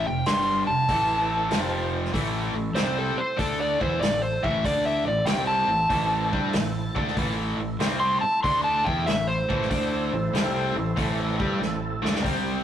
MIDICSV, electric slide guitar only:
0, 0, Header, 1, 2, 480
1, 0, Start_track
1, 0, Key_signature, 0, "minor"
1, 0, Tempo, 626305
1, 1642, Time_signature, 4, 2, 24, 8
1, 4527, Tempo, 632911
1, 9630, End_track
2, 0, Start_track
2, 0, Title_t, "Electric slide guitar"
2, 0, Program_c, 0, 29
2, 49, Note_on_c, 0, 79, 88
2, 202, Note_on_c, 0, 84, 80
2, 203, Note_off_c, 0, 79, 0
2, 512, Note_off_c, 0, 84, 0
2, 515, Note_on_c, 0, 81, 102
2, 1448, Note_off_c, 0, 81, 0
2, 2108, Note_on_c, 0, 72, 90
2, 2270, Note_off_c, 0, 72, 0
2, 2287, Note_on_c, 0, 69, 78
2, 2437, Note_on_c, 0, 72, 92
2, 2439, Note_off_c, 0, 69, 0
2, 2594, Note_off_c, 0, 72, 0
2, 2598, Note_on_c, 0, 69, 96
2, 2755, Note_off_c, 0, 69, 0
2, 2759, Note_on_c, 0, 74, 89
2, 2915, Note_off_c, 0, 74, 0
2, 2922, Note_on_c, 0, 72, 93
2, 3063, Note_on_c, 0, 74, 85
2, 3077, Note_off_c, 0, 72, 0
2, 3227, Note_off_c, 0, 74, 0
2, 3233, Note_on_c, 0, 72, 84
2, 3392, Note_off_c, 0, 72, 0
2, 3398, Note_on_c, 0, 76, 83
2, 3555, Note_off_c, 0, 76, 0
2, 3563, Note_on_c, 0, 74, 78
2, 3718, Note_off_c, 0, 74, 0
2, 3720, Note_on_c, 0, 76, 92
2, 3877, Note_off_c, 0, 76, 0
2, 3891, Note_on_c, 0, 74, 85
2, 4028, Note_on_c, 0, 79, 77
2, 4043, Note_off_c, 0, 74, 0
2, 4191, Note_off_c, 0, 79, 0
2, 4194, Note_on_c, 0, 81, 97
2, 5606, Note_off_c, 0, 81, 0
2, 6113, Note_on_c, 0, 84, 107
2, 6271, Note_off_c, 0, 84, 0
2, 6274, Note_on_c, 0, 81, 100
2, 6433, Note_off_c, 0, 81, 0
2, 6442, Note_on_c, 0, 84, 99
2, 6596, Note_off_c, 0, 84, 0
2, 6601, Note_on_c, 0, 81, 96
2, 6755, Note_on_c, 0, 79, 85
2, 6756, Note_off_c, 0, 81, 0
2, 6913, Note_off_c, 0, 79, 0
2, 6920, Note_on_c, 0, 76, 96
2, 7076, Note_off_c, 0, 76, 0
2, 7080, Note_on_c, 0, 72, 100
2, 8493, Note_off_c, 0, 72, 0
2, 9630, End_track
0, 0, End_of_file